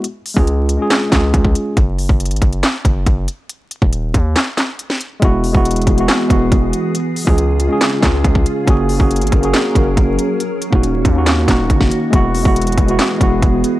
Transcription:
<<
  \new Staff \with { instrumentName = "Tine electric piano" } { \time 4/4 \key des \mixolydian \tempo 4 = 139 r8. <aes des' f' aes'>4 <aes des' f' aes'>8. <aes des' f' aes'>4. | r1 | r1 | <gis b e' fis'>8. <gis b e' fis'>4 <gis b e' fis'>8. <gis b e' fis'>4. |
r8. <aes des' f' aes'>4 <aes des' f' aes'>8. <aes des' f' aes'>4. | <bes des' ges' aes'>8. <bes des' ges' aes'>4 <bes des' ges' aes'>8. <bes des' ges' bes'>4. | r8. <bes des' ees' ges'>4 <bes des' ees' ges'>8. <bes des' ees' ges'>4. | <gis b e' fis'>8. <gis b e' fis'>4 <gis b e' fis'>8. <gis b e' fis'>4. | }
  \new Staff \with { instrumentName = "Ambient pad" } { \time 4/4 \key des \mixolydian << { r1 | r1 | r1 | <e fis' gis'>1 |
<des f' aes'>1 | <ges aes' bes'>1 | <ees ges'>1 | <e gis'>1 | } \\ { r1 | r1 | r1 | b1 |
des'1~ | des'1 | bes1 | b1 | } >> }
  \new Staff \with { instrumentName = "808-style bass" } { \clef bass \time 4/4 \key des \mixolydian r8. des,4 r8. des,8 des,8 r8 | ges,,8. ges,,8 aes,,16 ges,,8 r8 ges,,8 ges,,8 r8 | r8. ees,,8. ees,8 r2 | e,,8. e,,8. e,,8 r8 e,,8 e,,8 r8 |
r8. des,4 r8. des,8 des,8 r8 | ges,,8. ges,,8 aes,,16 ges,,8 r8 ges,,8 ges,,8 r8 | r8. ees,,8. ees,4 ees,,8 ges,,8 r8 | e,,8. e,,8. e,,8 r8 e,,8 e,,8 r8 | }
  \new DrumStaff \with { instrumentName = "Drums" } \drummode { \time 4/4 hh8 hho16 bd16 hh8 hh8 <hc hh sn>8 <hc hh bd sn>8 <hh bd>16 bd16 hh8 | <hh bd>8 hho16 bd16 hh32 hh32 hh32 hh32 <hh bd>16 hh16 <hc hh sn>8 <hh bd>8 <hh bd>8 hh8 | hh8 hh16 bd16 hh8 <hh bd>8 <hc hh sn>8 <hc hh sn>8 hh16 sn16 hh8 | <hh bd>8 hho16 bd16 hh32 hh32 hh32 hh32 <hh bd>16 hh16 <hc hh sn>8 <hh bd>8 <hh bd>8 hh8 |
hh8 hho16 bd16 hh8 hh8 <hc hh sn>8 <hc hh bd sn>8 <hh bd>16 bd16 hh8 | <hh bd>8 hho16 bd16 hh32 hh32 hh32 hh32 <hh bd>16 hh16 <hc hh sn>8 <hh bd>8 <hh bd>8 hh8 | hh8 hh16 bd16 hh8 <hh bd>8 <hc hh sn>8 <hc hh bd sn>8 <hh bd>16 <bd sn>16 hh8 | <hh bd>8 hho16 bd16 hh32 hh32 hh32 hh32 <hh bd>16 hh16 <hc hh sn>8 <hh bd>8 <hh bd>8 hh8 | }
>>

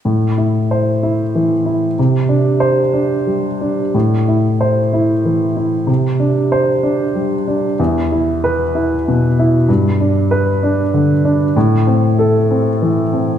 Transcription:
\new Staff \with { instrumentName = "Upright piano" } { \time 6/8 \key a \minor \tempo 4. = 63 << { r4 c''4 r4 | r4 c''4 r4 | r4 c''4 r4 | r4 c''4 r4 |
r4 b'4 r4 | r4 b'4 r4 | r4 a'4 r4 | } \\ { a,8 e'4 e'8 e8 e'8 | c8 d'4 d'8 g8 d'8 | a,8 e'4 e'8 e8 e'8 | c8 d'4 d'8 g8 d'8 |
e,8 e'4 e'8 b,8 e'8 | g,8 d'4 d'8 d8 d'8 | a,8 c'4 c'8 e8 c'8 | } >> }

